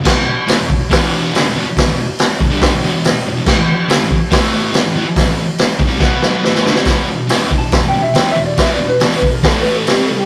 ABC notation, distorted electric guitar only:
X:1
M:4/4
L:1/16
Q:1/4=140
K:Em
V:1 name="Distorted electric guitar" clef=bass
[E,,B,,] [E,,B,,] z2 [A,,E,] [E,,B,,]2 z [E,,B,,E,]4 [G,,D,] [E,,B,,] [E,,B,,] z | z [E,,B,,]2 z3 [E,,B,,] [G,,D,G,]2 [E,,B,,] [E,,B,,] [E,,B,,]2 z [E,,B,,] [E,,B,,] | [A,,E,] [A,,E,] z2 [D,A,] [A,,E,]2 z [A,,E,A,]4 [C,G,] [A,,E,] [A,,E,] z | z [A,,E,]2 z3 [A,,E,] [C,G,] [B,,F,B,]4 [A,,E,A,]2 [D,A,] [C,G,] |
[E,,B,,E,]2 [E,,B,,]2 [E,,B,,E,]2 [E,,B,,]2 [E,,B,,]2 [E,,B,,]2 [E,,B,,E,]2 [E,,B,,]2 | [E,,B,,E,]2 [E,,B,,]2 [E,,B,,E,]2 [E,,B,,]2 [A,,E,A,]2 [A,,E,A,]2 [C,G,C]2 [C,G,]2 |]